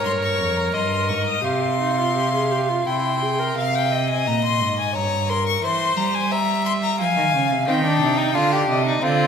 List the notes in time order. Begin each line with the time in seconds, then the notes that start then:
Already playing: A#4 C#5
0.04 G2 C6
0.22 C#6
0.39 F2
0.56 A#5
0.74 G2 D#5 C6
1.09 G#2 C#6
1.26 D#6
1.44 C3 G4 F5 C6
1.80 D#4
1.98 F4
2.16 G4
2.34 G#4
2.52 G4
2.69 F4
2.87 C3 E4 G5 C6
3.22 G#4
3.39 A#4
3.57 C3 F5
3.76 G5
3.91 D#5
4.09 G#5
4.26 A#2 A#5
4.44 C6
4.61 G#2
4.79 G#5
4.95 G2 C#5 A#5
5.29 A#4 C6
5.46 C#6
5.63 E3 C5 C6
5.97 G3 A#5
6.14 G#5
6.31 E5 A#5
6.65 C6
6.83 A#5
7.00 F3 F5 G#5
7.17 D#3
7.34 C#3
7.51 C3
7.67 D#3 C4 D#4 G5
7.84 D4
8.02 C3
8.18 D#4
8.35 D3 D4 F4 F5
8.52 G4
8.68 C3 D#5
8.86 D#4
9.02 D3 C4 F4 D5